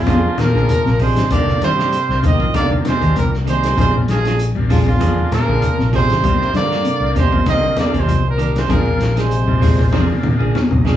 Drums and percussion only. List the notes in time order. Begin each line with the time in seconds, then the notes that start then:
0.07 kick, snare, closed hi-hat, high conga
0.38 snare, closed hi-hat, high conga
0.55 kick, snare
0.69 closed hi-hat, high conga
0.86 snare
0.99 kick, open hi-hat
1.16 snare, closed hi-hat
1.30 kick, closed hi-hat, low conga
1.48 snare, high conga
1.61 snare, closed hi-hat
1.79 snare
1.92 closed hi-hat
2.10 snare
2.23 closed hi-hat, high conga, low conga
2.40 kick
2.54 kick, closed hi-hat, high conga
2.71 high conga
2.85 snare, closed hi-hat, high conga
3.02 kick, closed hi-hat
3.16 closed hi-hat, high conga
3.34 snare
3.47 closed hi-hat
3.63 snare, closed hi-hat
3.78 kick, closed hi-hat, low conga
3.94 high conga
4.08 snare, closed hi-hat
4.25 snare, closed hi-hat
4.39 closed hi-hat
4.56 high conga
4.70 open hi-hat, high conga, low conga
4.87 kick, low conga
5.01 kick, closed hi-hat, high conga
5.18 high conga
5.32 snare, closed hi-hat, high conga
5.48 kick
5.62 closed hi-hat, high conga
5.79 snare
5.93 kick, open hi-hat, high conga
6.10 snare, closed hi-hat
6.24 kick, closed hi-hat, low conga
6.41 snare
6.54 snare, closed hi-hat
6.71 snare
6.85 closed hi-hat
7.16 snare, closed hi-hat, high conga, low conga
7.32 kick, low conga
7.46 kick, snare, closed hi-hat, high conga
7.77 snare, closed hi-hat, high conga
7.94 kick, closed hi-hat
8.08 closed hi-hat, high conga
8.39 closed hi-hat
8.56 snare, closed hi-hat
8.69 kick, closed hi-hat, low conga
8.86 high conga
9.00 snare, closed hi-hat
9.17 snare, closed hi-hat
9.31 closed hi-hat
9.47 high conga
9.62 snare, open hi-hat, high conga, low conga
9.79 kick, snare, low conga
9.93 kick, snare, high conga
10.10 high conga
10.23 mid tom, high conga
10.41 kick
10.55 snare, high conga
10.71 high conga
10.85 snare, low conga